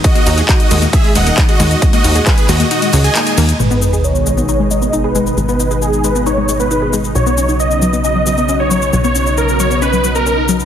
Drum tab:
RD |x-x-x-x-x-x-x-x-|x-x-x-x-x-x-x-x-|----------------|----------------|
HH |xxoxxxoxxooxxxox|xxoxxxoxxxoxxxox|----------------|----------------|
SH |xxxxxxxxx-xxx-xx|xxxxxxxxxxxxxxxx|xxxxxxxxx-xxx-xx|xxxxxxxxx-xxx-xx|
CP |----x-------x---|----x-x-----x---|----------------|----------------|
BD |o---o---o---o---|o---o-----------|----------------|----------------|

RD |----------------|----------------|
HH |----------------|----------------|
SH |xxxxxxxxx-xxx-xx|xxxxxxxxxxxxx-xx|
CP |----------------|----------------|
BD |----------------|----------------|